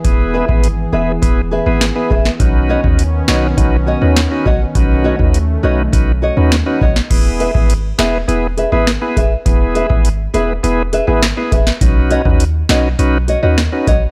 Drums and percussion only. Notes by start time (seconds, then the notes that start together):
0.05 kick, closed hi-hat
0.49 kick
0.64 closed hi-hat
1.23 kick, closed hi-hat
1.81 snare, closed hi-hat
2.11 kick
2.25 snare
2.40 kick, closed hi-hat
2.84 kick
2.99 closed hi-hat
3.28 snare
3.58 kick, closed hi-hat
4.16 snare, closed hi-hat
4.46 kick
4.75 kick, closed hi-hat
5.20 kick
5.34 closed hi-hat
5.93 kick, closed hi-hat
6.52 snare, closed hi-hat
6.81 kick
6.96 snare
7.11 kick, closed hi-hat, crash
7.40 closed hi-hat
7.55 kick
7.70 closed hi-hat
7.99 snare, closed hi-hat
8.29 closed hi-hat
8.58 closed hi-hat
8.87 cross-stick, snare, closed hi-hat
9.17 kick, closed hi-hat
9.46 kick, closed hi-hat
9.75 closed hi-hat
9.90 kick
10.05 closed hi-hat
10.34 closed hi-hat
10.64 closed hi-hat
10.93 closed hi-hat
11.23 cross-stick, snare, closed hi-hat
11.52 kick, closed hi-hat
11.67 snare
11.81 kick, closed hi-hat
12.11 closed hi-hat
12.25 kick
12.40 closed hi-hat
12.69 snare, closed hi-hat
12.99 closed hi-hat
13.28 closed hi-hat
13.58 cross-stick, snare, closed hi-hat
13.87 kick, closed hi-hat